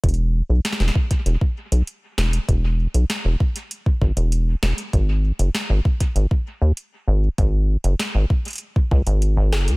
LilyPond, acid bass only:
\new Staff \with { instrumentName = "Acid bass" } { \clef bass \time 4/4 \key gis \phrygian \tempo 4 = 98 e,,8. b,,16 r16 e,,16 r8 e,,16 r8 b,,16 r8 e,,16 r16 | e,,8. b,,16 r16 e,,16 r4 gis,,16 e,,8. e,,16 r16 | gis,,8. fis,,16 r16 gis,,16 r8 gis,,16 r8 dis,16 r8 gis,,16 r16 | gis,,8. fis,,16 r16 gis,,16 r4 cis,16 gis,,8 gis,,16 fis,,16 dis,16 | }